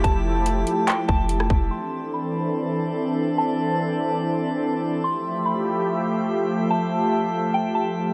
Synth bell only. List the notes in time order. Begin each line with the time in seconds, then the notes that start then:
0.04 A5
0.87 G5
1.08 A5
1.71 C6
2.14 B5
3.38 A5
5.04 C6
5.46 B5
6.70 A5
7.54 G5
7.75 A5